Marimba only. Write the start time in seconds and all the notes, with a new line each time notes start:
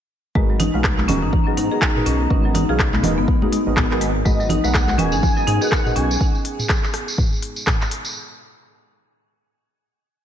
0.35 G#3
0.50 F#3
0.60 D#4
0.74 G#3
1.08 C#4
1.22 D#4
1.47 F#3
1.57 D#4
1.72 G#4
2.06 C#4
2.30 C#4
2.45 F#3
2.55 D#4
2.69 G#4
2.93 B3
3.18 B3
3.42 D#4
3.52 D#4
3.77 B3
3.91 F#3
4.01 G#3
4.25 G#3
4.40 F#3
4.50 D#4
4.64 G#3
4.98 C#4
5.13 D#4
5.37 F#3
5.47 D#4
5.61 G#4
5.96 C#4